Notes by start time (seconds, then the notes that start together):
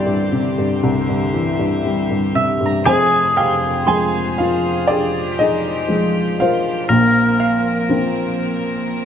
Already playing: C2 G2 D3 E3 G3 C4 G4 C5 D5 E5
0.06 G2
0.32 C3
0.58 G2
0.83 C2 E5
1.09 G2
1.34 E3
1.59 G2
1.85 G3
2.10 G2
2.35 C3 E5
2.61 G2
2.66 A#5
2.86 F1 F2 F3 F4 G#4 C5 G#5
3.37 G4 F5 G5
3.87 F3 G#3 G#4 G#5 C6
4.38 F4 F5
4.87 D4 G4 G#4 D5
5.32 G4
5.39 D#4 G#4 D#5
5.88 F3 G#3
6.40 F4 A#4 C5 F5
6.89 A#1 A#2 A#3 C4 A#4
7.40 F5
7.89 F3 A#3 C4